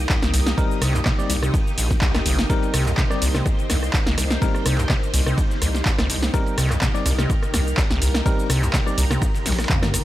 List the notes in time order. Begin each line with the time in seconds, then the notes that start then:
Already playing: A#3 D#4 G4 D#5
0.09 C2, kick, snare, clap, ride, cabasa
0.22 C2, snare, cabasa
0.34 C2, snare, open hi-hat, ride, cabasa
0.47 snare, cabasa
0.58 C2 G3 C4 D#4 A#4, kick, ride, cabasa
0.71 cabasa
0.82 C2 C3, cross-stick, open hi-hat, ride, cabasa
0.94 D#2, clap, cabasa
1.05 C3, kick, snare, clap, ride, cabasa
1.19 G3 C4 D#4 D5, cabasa
1.30 C2, open hi-hat, ride, cabasa
1.43 C3, cross-stick, cabasa
1.54 C2, kick, ride, cabasa
1.67 cabasa
1.78 A#1, open hi-hat, ride, cabasa
1.91 kick, snare, cabasa
2.01 C2, kick, snare, clap, ride, cabasa
2.15 C2, cross-stick, snare, cabasa
2.26 G1 C2, open hi-hat, ride, cabasa
2.38 A#1, snare, cabasa
2.50 C2 G3 C4 D#4 A#4 C5, kick, ride, cabasa
2.63 ride, cabasa
2.74 C2 C3, cross-stick, open hi-hat, ride, cabasa
2.86 D#2, clap, cabasa
2.97 C3, kick, snare, clap, ride, cabasa
3.10 G3 C4 D#4 D5, cross-stick, snare, cabasa
3.22 C2, open hi-hat, ride, cabasa
3.35 C3, cross-stick, snare, cabasa
3.46 C2, kick, cross-stick, ride, cabasa
3.59 ride, cabasa
3.70 C2 D#2, cross-stick, snare, open hi-hat, ride, cabasa
3.83 cross-stick, cabasa
3.93 C2, kick, snare, clap, ride, cabasa
4.06 C2, snare, cabasa
4.18 C2, cross-stick, snare, open hi-hat, ride, cabasa
4.31 snare, cabasa
4.42 C2 G3 C4 D#4 A#4, kick, ride, cabasa
4.55 cross-stick, cabasa
4.66 C2 C3, cross-stick, open hi-hat, ride, cabasa
4.78 D#2, clap, cabasa
4.89 C3, kick, cross-stick, snare, clap, ride, cabasa
5.03 cabasa
5.14 C2, open hi-hat, ride, cabasa
5.26 C3, cross-stick, cabasa
5.38 C2, kick, ride, cabasa
5.51 snare, cabasa
5.62 C2 D#2, cross-stick, open hi-hat, ride, cabasa
5.75 snare, cabasa
5.85 C2, kick, snare, clap, ride, cabasa
5.98 C2, cross-stick, snare, cabasa
6.10 C2, open hi-hat, ride, cabasa
6.23 snare, cabasa
6.34 C2 G3 C4 D#4 A#4, kick, cross-stick, ride, cabasa
6.47 ride, cabasa
6.58 C2 C3, cross-stick, open hi-hat, ride, cabasa
6.70 D#2, cross-stick, clap, cabasa
6.81 C3, kick, snare, clap, ride, cabasa
6.95 G3 C4 D#4 D5, snare, cabasa
7.06 C2, cross-stick, open hi-hat, ride, cabasa
7.19 C3, cross-stick, snare, cabasa
7.30 C2, kick, ride, cabasa
7.43 cross-stick, ride, cabasa
7.54 C2 D#2, cross-stick, snare, open hi-hat, ride, cabasa
7.67 cabasa
7.77 C2, kick, cross-stick, snare, clap, ride, cabasa
7.91 C2, snare, cabasa
8.02 C2, snare, open hi-hat, ride, cabasa
8.15 cross-stick, snare, cabasa
8.26 C2 G3 C4 D#4 A#4, kick, ride, cabasa
8.39 cabasa
8.50 C2 C3, cross-stick, open hi-hat, ride, cabasa
8.62 D#2, clap, cabasa
8.73 C3, kick, snare, clap, ride, cabasa
8.86 G3 C4 D#4 D5, cross-stick, cabasa
8.98 C2, open hi-hat, ride, cabasa
9.10 C3, cross-stick, snare, cabasa
9.22 C2, kick, cross-stick, ride, cabasa
9.35 snare, cabasa
9.46 A#1 C2, snare, open hi-hat, high tom, ride, cabasa
9.52 snare, ride
9.59 cross-stick, snare, ride, cabasa
9.64 snare, ride
9.69 F2, kick, clap, mid tom, cabasa
9.83 G2, cross-stick, snare, mid tom, cabasa
9.94 G1 C2, cross-stick, open hi-hat, ride, cabasa